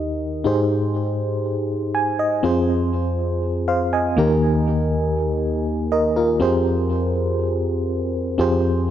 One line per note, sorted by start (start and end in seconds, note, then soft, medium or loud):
0.00 0.42 D#2 medium
0.00 0.42 D#3 medium
0.00 0.41 D#4 medium
0.00 0.42 G4 medium
0.00 0.42 A#4 medium
0.00 0.43 D#5 medium
0.44 2.40 G#2 medium
0.44 2.39 D#4 medium
0.44 2.40 G4 medium
0.44 2.40 G#4 medium
0.44 2.41 C5 medium
1.95 2.18 G#5 medium
2.19 2.42 D#5 medium
2.43 4.14 F2 medium
2.43 4.14 C4 medium
2.43 4.14 F4 medium
2.43 4.14 G#4 medium
2.43 3.66 C5 medium
3.68 3.92 C5 medium
3.68 3.92 F5 medium
3.93 4.40 D#5 medium
3.93 4.40 G#5 medium
4.17 6.12 D#2 medium
4.17 6.12 D#3 medium
4.17 6.12 A#3 medium
4.17 6.12 D#4 medium
4.17 5.88 G4 medium
4.17 5.88 A#4 medium
5.92 6.15 A#4 medium
5.92 6.15 D#5 medium
6.16 6.39 F4 medium
6.16 6.63 A#4 medium
6.40 8.35 F2 medium
6.40 8.35 C4 medium
6.40 8.35 F4 medium
6.40 8.35 G4 medium
6.40 8.35 G#4 medium
6.40 8.36 C5 medium
8.38 8.90 F2 medium
8.38 8.90 C4 medium
8.38 8.90 F4 medium
8.38 8.90 G4 medium
8.38 8.90 G#4 medium
8.38 8.90 C5 medium